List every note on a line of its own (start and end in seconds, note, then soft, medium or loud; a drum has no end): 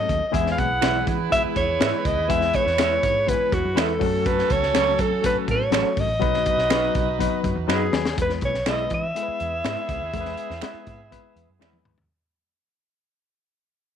0.00 0.20 F#3 medium
0.00 0.20 A3 medium
0.00 0.21 C#4 medium
0.00 0.21 F#4 medium
0.00 0.24 A4 medium
0.00 0.28 D#5 loud
0.09 0.19 D#2 medium
0.09 kick loud
0.09 closed hi-hat medium
0.28 0.69 E3 loud
0.28 0.35 D#5 medium
0.32 0.54 E2 loud
0.32 0.69 G#3 loud
0.32 0.70 B3 loud
0.32 0.70 E4 medium
0.32 3.73 E4 medium
0.32 0.70 G#4 loud
0.32 3.73 G#4 medium
0.32 3.73 B4 medium
0.32 0.51 E5 loud
0.32 kick loud
0.32 closed hi-hat medium
0.47 snare soft
0.52 0.60 F5 medium
0.58 0.79 B1 loud
0.58 1.08 F#5 loud
0.58 kick medium
0.58 closed hi-hat medium
0.81 1.03 B1 medium
0.81 1.19 E3 medium
0.81 1.19 G#3 medium
0.81 1.19 B3 medium
0.81 0.96 E4 loud
0.81 1.19 E4 medium
0.81 0.97 G#4 medium
0.81 1.19 G#4 medium
0.81 0.97 B4 medium
0.81 0.97 E5 loud
0.81 finger snap loud
0.81 snare loud
0.81 closed hi-hat loud
1.07 1.28 E3 loud
1.07 kick loud
1.07 closed hi-hat medium
1.29 1.67 E3 medium
1.29 1.67 G#3 medium
1.29 1.68 B3 medium
1.29 1.68 E4 medium
1.29 1.37 F#4 medium
1.29 1.43 E5 loud
1.29 kick medium
1.29 closed hi-hat loud
1.37 1.71 G#4 medium
1.44 muted picked electric bass stroke soft
1.56 1.76 E2 medium
1.56 2.07 C#5 loud
1.56 kick loud
1.56 closed hi-hat medium
1.79 1.91 G#2 loud
1.79 2.16 E3 medium
1.79 2.17 G#3 medium
1.79 2.17 B3 medium
1.79 1.95 E4 medium
1.79 2.17 E4 medium
1.79 1.95 G#4 loud
1.79 1.87 A#4 medium
1.79 1.95 B4 loud
1.79 1.96 E5 loud
1.79 finger snap loud
1.79 snare loud
1.79 closed hi-hat medium
1.87 2.20 B4 medium
2.05 2.15 C#2 loud
2.05 2.31 D#5 loud
2.05 kick loud
2.05 closed hi-hat medium
2.18 2.28 D#2 loud
2.29 2.50 E2 loud
2.29 2.66 E3 loud
2.29 2.66 G#3 loud
2.29 2.66 B3 loud
2.29 2.66 E4 loud
2.29 2.66 G#4 loud
2.29 2.57 E5 loud
2.29 kick loud
2.29 closed hi-hat medium
2.41 snare soft
2.53 3.31 C#5 loud
2.53 kick medium
2.53 closed hi-hat medium
2.66 2.97 E2 loud
2.66 snare soft
2.78 3.15 E3 medium
2.78 3.15 G#3 medium
2.78 3.15 B3 medium
2.78 3.15 E4 medium
2.78 2.93 E4 medium
2.78 3.15 G#4 medium
2.78 2.93 G#4 loud
2.78 2.93 B4 loud
2.78 2.93 E5 loud
2.78 finger snap loud
2.78 snare loud
2.78 closed hi-hat loud
3.03 3.34 G#2 loud
3.03 kick loud
3.03 closed hi-hat medium
3.27 3.64 E3 medium
3.27 3.64 G#3 medium
3.27 3.64 B3 medium
3.27 3.64 E4 medium
3.27 3.34 G4 medium
3.27 3.56 B4 loud
3.27 kick loud
3.27 closed hi-hat loud
3.34 3.67 G#4 medium
3.52 3.62 E2 loud
3.52 3.81 F#4 loud
3.52 kick loud
3.52 closed hi-hat medium
3.65 3.75 F#2 loud
3.74 3.97 E2 loud
3.74 4.00 E3 medium
3.74 4.00 G#3 medium
3.74 4.01 B3 medium
3.74 4.01 E4 medium
3.74 3.91 E4 loud
3.74 3.91 G#4 loud
3.74 4.01 B4 medium
3.74 3.91 B4 loud
3.74 3.91 E5 loud
3.74 finger snap loud
3.74 snare loud
3.74 closed hi-hat medium
3.80 4.28 A4 loud
3.99 4.42 F#2 loud
3.99 4.59 F#3 loud
3.99 4.59 A3 medium
3.99 4.59 C#4 medium
3.99 5.93 C#4 loud
3.99 4.60 F#4 medium
3.99 5.93 F#4 medium
3.99 4.07 G#4 medium
3.99 5.93 A4 loud
3.99 kick loud
3.99 open hi-hat medium
4.06 4.63 A4 loud
4.26 4.53 B4 loud
4.26 kick loud
4.26 closed hi-hat medium
4.38 snare soft
4.50 4.71 C#2 loud
4.50 5.02 C#5 loud
4.50 kick loud
4.50 closed hi-hat medium
4.63 snare soft
4.73 4.95 C#2 loud
4.73 5.10 F#3 medium
4.73 5.10 A3 medium
4.73 5.11 C#4 medium
4.73 4.89 C#4 medium
4.73 5.11 F#4 medium
4.73 4.89 F#4 medium
4.73 5.11 A4 medium
4.73 4.89 A4 loud
4.73 4.89 C#5 loud
4.73 finger snap medium
4.73 snare loud
4.73 closed hi-hat loud
4.99 5.19 F#3 loud
4.99 5.25 A4 loud
4.99 kick loud
4.99 closed hi-hat medium
5.22 5.59 F#3 medium
5.22 5.60 A3 medium
5.22 5.60 C#4 medium
5.22 5.60 F#4 medium
5.22 5.60 A4 medium
5.22 kick loud
5.22 closed hi-hat loud
5.26 5.37 B4 loud
5.35 muted picked electric bass stroke soft
5.48 5.68 A2 medium
5.48 6.02 C#5 medium
5.48 kick loud
5.48 closed hi-hat medium
5.71 5.82 A1 medium
5.71 6.08 F#3 medium
5.71 6.08 A3 medium
5.71 6.09 C#4 medium
5.71 5.87 C#4 loud
5.71 6.09 F#4 medium
5.71 5.87 F#4 medium
5.71 6.09 A4 medium
5.71 5.87 A4 loud
5.71 5.87 C#5 loud
5.71 finger snap loud
5.71 snare loud
5.71 closed hi-hat medium
5.97 6.07 G#1 loud
5.97 7.46 D#5 loud
5.97 kick medium
5.97 open hi-hat medium
6.09 6.19 A1 loud
6.20 6.42 B1 loud
6.20 6.57 F#3 loud
6.20 6.58 B3 medium
6.20 6.58 D#4 loud
6.20 7.90 D#4 medium
6.20 6.58 F#4 medium
6.20 7.90 F#4 medium
6.20 6.58 B4 loud
6.20 7.90 B4 loud
6.20 kick loud
6.20 closed hi-hat medium
6.34 snare soft
6.46 kick loud
6.46 closed hi-hat medium
6.57 6.88 B1 loud
6.57 snare soft
6.70 7.07 F#3 medium
6.70 7.07 B3 medium
6.70 6.85 D#4 medium
6.70 7.07 D#4 medium
6.70 7.07 F#4 medium
6.70 6.85 F#4 medium
6.70 7.07 B4 loud
6.70 6.85 B4 loud
6.70 6.85 D#5 loud
6.70 finger snap medium
6.70 snare loud
6.70 closed hi-hat loud
6.95 7.26 B1 loud
6.95 kick loud
6.95 closed hi-hat medium
7.19 7.56 F#3 medium
7.19 7.55 B3 medium
7.19 7.56 D#4 medium
7.19 7.56 F#4 medium
7.19 7.56 B4 loud
7.19 kick loud
7.19 closed hi-hat loud
7.44 7.54 F#2 loud
7.44 kick medium
7.44 closed hi-hat medium
7.55 7.66 E2 loud
7.68 7.88 F#2 loud
7.68 8.05 F#3 medium
7.68 8.05 B3 medium
7.68 7.83 D#4 medium
7.68 8.05 D#4 medium
7.68 8.05 F#4 medium
7.68 7.83 F#4 medium
7.68 8.05 B4 loud
7.68 7.83 B4 medium
7.68 7.83 D#5 loud
7.68 7.91 B5 medium
7.68 finger snap loud
7.68 snare medium
7.73 8.17 G#4 medium
7.92 8.13 D#2 medium
7.92 8.16 G#5 medium
7.92 snare loud
8.05 snare loud
8.17 8.38 E2 loud
8.17 8.54 G#3 medium
8.17 8.54 B3 medium
8.17 8.54 E4 medium
8.17 8.54 G#4 medium
8.17 8.24 A4 medium
8.17 kick loud
8.17 closed hi-hat medium
8.22 8.32 B4 loud
8.22 8.57 B4 medium
8.29 snare soft
8.41 8.62 B1 medium
8.41 8.70 C#5 loud
8.41 kick loud
8.41 closed hi-hat medium
8.54 snare soft
8.66 8.86 B1 medium
8.66 9.03 G#3 medium
8.66 9.03 B3 medium
8.66 9.03 E4 medium
8.66 8.81 E4 medium
8.66 9.03 G#4 medium
8.66 8.81 G#4 loud
8.66 8.73 A4 medium
8.66 8.82 B4 medium
8.66 8.92 D#5 loud
8.66 8.82 E5 medium
8.66 finger snap loud
8.66 snare loud
8.66 closed hi-hat loud
8.73 9.06 B4 medium
8.90 9.11 E3 loud
8.90 kick medium
8.90 closed hi-hat medium
8.94 11.59 E5 loud
9.15 9.52 G#3 medium
9.15 9.52 B3 medium
9.15 11.82 B3 medium
9.15 9.52 E4 medium
9.15 11.82 E4 medium
9.15 11.82 G#4 medium
9.15 9.52 G#4 medium
9.15 9.22 A4 medium
9.15 closed hi-hat loud
9.22 9.56 B4 medium
9.28 muted picked electric bass stroke soft
9.40 9.61 E2 medium
9.40 closed hi-hat medium
9.64 9.75 G#2 loud
9.64 10.01 G#3 medium
9.64 10.01 B3 medium
9.64 9.79 E4 medium
9.64 10.01 E4 medium
9.64 9.79 G#4 medium
9.64 10.02 G#4 medium
9.64 9.79 B4 medium
9.64 10.02 B4 loud
9.64 9.79 E5 medium
9.64 finger snap medium
9.64 snare loud
9.64 closed hi-hat medium
9.89 9.99 C#2 medium
9.89 kick loud
9.89 closed hi-hat medium
10.01 10.11 D#2 medium
10.13 10.34 E2 loud
10.13 10.50 G#3 loud
10.13 10.50 B3 medium
10.13 10.50 E4 medium
10.13 10.51 G#4 medium
10.13 10.20 A#4 medium
10.13 kick loud
10.13 closed hi-hat medium
10.21 10.54 B4 loud
10.25 snare soft
10.37 closed hi-hat medium
10.50 10.61 E2 loud
10.50 snare soft
10.61 10.99 G#3 medium
10.61 10.99 B3 medium
10.61 10.99 E4 medium
10.61 10.77 E4 medium
10.61 10.77 G#4 medium
10.61 10.99 G#4 medium
10.61 10.77 B4 medium
10.61 10.99 B4 loud
10.61 10.77 E5 medium
10.61 finger snap medium
10.61 snare loud
10.61 closed hi-hat loud
10.74 muted picked electric bass stroke soft
10.87 11.18 G#2 loud
10.87 kick loud
10.87 closed hi-hat medium
11.11 11.48 G#3 medium
11.11 11.48 B3 medium
11.11 11.48 E4 medium
11.11 11.49 G#4 medium
11.11 11.49 B4 loud
11.11 kick medium
11.11 closed hi-hat loud
11.36 11.46 E2 medium
11.36 closed hi-hat medium
11.49 11.59 F#2 medium
11.59 11.81 E2 medium
11.59 11.97 G#3 medium
11.59 11.97 B3 medium
11.59 11.97 E4 medium
11.59 11.75 E4 medium
11.59 11.75 G#4 medium
11.59 11.98 G#4 medium
11.59 11.75 B4 medium
11.59 11.98 B4 loud
11.59 11.76 E5 medium
11.59 finger snap medium
11.59 snare medium
11.73 high tom medium
11.85 12.06 D#2 loud
11.85 mid tom loud
11.98 floor tom medium